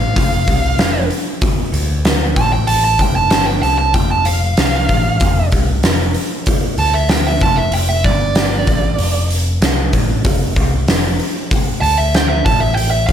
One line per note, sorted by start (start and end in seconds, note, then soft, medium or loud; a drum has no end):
0.00 0.14 A1 medium
0.00 1.07 F5 loud
0.16 0.45 F1 medium
0.16 kick loud
0.16 open hi-hat medium
0.47 0.77 C2 loud
0.47 kick medium
0.47 open hi-hat soft
0.78 1.07 F1 medium
0.78 snare loud
0.78 open hi-hat medium
1.10 open hi-hat soft
1.42 kick loud
1.42 open hi-hat medium
1.72 2.32 D2 medium
1.72 open hi-hat medium
2.05 snare loud
2.05 open hi-hat medium
2.36 2.95 A1 medium
2.36 2.52 A5 loud
2.36 kick loud
2.36 open hi-hat medium
2.53 2.67 G5 loud
2.67 2.83 A5 medium
2.67 open hi-hat medium
2.84 3.02 A5 loud
2.99 3.29 F1 medium
2.99 3.15 G5 medium
2.99 kick medium
2.99 open hi-hat medium
3.16 3.30 A5 loud
3.31 3.60 G1 medium
3.31 3.46 A5 medium
3.31 snare loud
3.31 open hi-hat medium
3.46 3.62 G5 loud
3.62 3.92 C2 medium
3.62 3.77 A5 medium
3.62 open hi-hat medium
3.78 3.94 A5 medium
3.94 4.53 F1 medium
3.94 4.09 G5 loud
3.94 kick loud
3.94 open hi-hat medium
4.11 4.26 A5 medium
4.25 5.48 F5 medium
4.25 open hi-hat medium
4.57 4.87 C2 medium
4.57 snare loud
4.57 open hi-hat medium
4.89 5.18 A1 medium
4.89 kick medium
4.89 open hi-hat medium
5.20 5.50 F1 medium
5.20 kick loud
5.20 open hi-hat medium
5.52 5.82 C2 loud
5.52 kick medium
5.52 open hi-hat soft
5.83 6.13 F1 medium
5.83 snare loud
5.83 open hi-hat medium
6.14 open hi-hat soft
6.46 kick loud
6.46 open hi-hat medium
6.78 7.37 D2 medium
6.78 6.94 A5 loud
6.78 open hi-hat medium
6.94 7.09 E5 medium
7.09 7.27 G5 medium
7.09 snare loud
7.09 open hi-hat medium
7.27 7.41 E5 loud
7.41 7.70 F1 medium
7.41 7.57 A5 loud
7.41 kick loud
7.41 open hi-hat medium
7.57 7.72 E5 loud
7.72 8.02 F1 medium
7.72 7.89 G5 medium
7.72 open hi-hat medium
7.89 8.05 E5 medium
8.04 8.63 G1 loud
8.04 9.26 D5 loud
8.04 kick medium
8.04 open hi-hat medium
8.35 snare loud
8.35 open hi-hat medium
8.67 8.96 A1 loud
8.67 kick medium
8.67 open hi-hat medium
8.99 9.57 F1 medium
8.99 open hi-hat medium
9.30 open hi-hat medium
9.61 9.90 C2 loud
9.61 snare loud
9.61 open hi-hat medium
9.93 10.22 A1 medium
9.93 kick medium
9.93 open hi-hat medium
10.25 10.54 F1 loud
10.25 kick loud
10.25 open hi-hat medium
10.56 10.85 C2 medium
10.56 kick medium
10.56 open hi-hat medium
10.88 11.17 F1 medium
10.88 snare loud
10.88 open hi-hat medium
11.20 open hi-hat soft
11.51 kick loud
11.51 open hi-hat medium
11.81 12.41 D2 medium
11.81 11.97 A5 loud
11.81 open hi-hat medium
11.98 12.15 E5 medium
12.14 12.29 G5 medium
12.14 snare loud
12.14 open hi-hat medium
12.29 12.44 E5 medium
12.45 13.04 A1 medium
12.45 12.60 A5 medium
12.45 kick loud
12.45 open hi-hat medium
12.60 12.74 E5 loud
12.74 12.90 G5 loud
12.74 open hi-hat medium
12.91 13.06 E5 medium
13.07 13.12 F1 loud
13.07 13.12 F5 loud
13.07 kick medium
13.07 open hi-hat soft